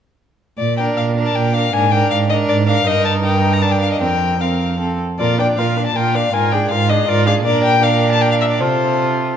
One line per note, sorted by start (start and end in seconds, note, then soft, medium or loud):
0.58 0.92 A#2 soft
0.58 0.76 D5 medium
0.77 1.15 D4 soft
0.77 1.15 A#4 soft
0.77 0.85 G5 soft
0.97 1.31 A#2 soft
0.97 1.05 F5 soft
1.16 1.54 D4 soft
1.16 1.54 A#4 soft
1.26 1.37 A5 medium
1.35 1.69 A#2 soft
1.35 1.55 G5 medium
1.54 1.73 D4 soft
1.54 1.74 A#4 soft
1.54 1.74 F5 medium
1.73 2.07 G#2 soft
1.73 1.91 D4 soft
1.73 1.92 A#4 soft
1.73 1.93 G#5 medium
1.91 2.29 D4 soft
1.91 2.29 A#4 soft
1.91 2.10 G5 medium
2.10 2.45 G#2 soft
2.10 2.18 F5 medium
2.29 2.67 D4 medium
2.29 2.66 A#4 soft
2.29 2.37 D#5 medium
2.49 2.82 G#2 medium
2.49 2.56 D5 medium
2.67 2.86 D4 soft
2.67 2.86 A#4 soft
2.67 2.88 F5 medium
2.86 3.97 G2 medium
2.86 3.22 D#4 soft
2.86 3.21 A#4 medium
2.86 3.04 D#5 medium
3.05 3.13 A5 medium
3.23 3.64 D#4 soft
3.23 3.99 A#4 soft
3.23 3.55 G5 medium
3.53 3.63 A#5 medium
3.62 4.03 D4 soft
3.62 3.73 A5 medium
3.71 3.80 G5 soft
3.81 3.91 F5 medium
3.92 4.01 D#5 soft
4.01 4.97 F2 soft
4.01 4.40 C4 soft
4.01 4.39 A#4 soft
4.01 4.42 G5 medium
4.40 4.79 C4 soft
4.40 4.79 A#4 soft
4.40 4.80 F5 soft
4.80 4.99 C4 soft
4.80 4.99 A4 soft
5.19 5.53 A#2 soft
5.19 5.40 F4 soft
5.19 5.40 A#4 soft
5.19 5.37 D5 medium
5.39 5.60 D4 soft
5.39 5.60 D5 soft
5.39 5.47 G5 medium
5.58 5.91 A#2 soft
5.58 5.79 F4 soft
5.58 5.78 A#4 soft
5.58 5.86 F5 soft
5.77 5.96 D4 soft
5.77 5.95 D5 soft
5.86 5.97 A5 soft
5.95 6.29 A#2 soft
5.95 6.17 F4 soft
5.95 6.16 A#4 soft
5.95 6.17 G5 medium
6.14 6.34 D4 soft
6.14 6.33 D5 soft
6.14 6.35 F5 medium
6.33 6.66 G#2 soft
6.33 6.54 F4 soft
6.33 6.54 A#4 soft
6.33 6.53 G#5 medium
6.52 6.72 D4 soft
6.52 6.72 G#4 soft
6.52 6.70 G5 medium
6.70 7.04 G#2 medium
6.70 6.91 F4 soft
6.70 6.91 A#4 soft
6.70 6.91 F5 medium
6.89 7.08 D4 soft
6.89 7.08 G#4 soft
6.89 7.10 D#5 medium
7.08 7.41 G#2 medium
7.08 7.28 F4 soft
7.08 7.28 A#4 soft
7.08 7.26 D5 medium
7.26 7.45 D4 soft
7.26 7.44 G#4 soft
7.26 7.34 F5 medium
7.45 8.62 A#2 soft
7.45 7.81 D4 soft
7.45 7.80 A#4 medium
7.45 7.63 D5 medium
7.64 7.84 G5 medium
7.83 8.63 D4 medium
7.83 8.62 A#4 soft
7.83 8.11 F5 medium
8.11 8.23 A5 medium
8.21 8.31 G5 medium
8.31 8.35 F5 medium
8.41 8.45 E5 medium
8.50 8.61 D5 soft
8.60 9.37 C3 soft
8.60 9.37 F4 soft
8.60 9.37 A4 soft
8.60 9.37 C5 medium